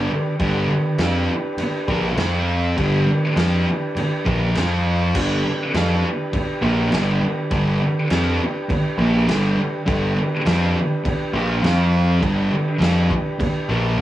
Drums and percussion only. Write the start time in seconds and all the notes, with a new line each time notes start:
0.40 kick, crash
0.98 snare, crash
1.58 crash
1.88 kick
2.17 snare, crash
2.78 kick, crash
3.37 snare, crash
3.97 crash
4.26 kick
4.55 snare, crash
5.15 kick, crash
5.74 snare, crash
6.33 kick, crash
6.92 snare, crash
7.51 kick, crash
8.10 snare, crash
8.70 kick, crash
9.29 snare, crash
9.88 kick, crash
10.46 snare, crash
11.05 kick, crash
11.64 snare, crash
12.23 kick, crash
12.82 snare, crash
13.11 kick
13.40 kick, crash